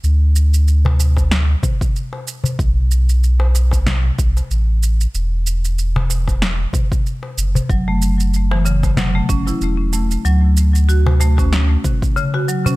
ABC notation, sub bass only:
X:1
M:4/4
L:1/8
Q:"Swing 16ths" 1/4=94
K:F#m
V:1 name="Sub bass" clef=bass
D,,4- D,, z3 | B,,,4- B,,, B,,, A,,,2 | E,,,4- E,,, z2 F,,, | F,,,4- F,,, F,,, E,,,2 |
D,,4- D,, z3 |]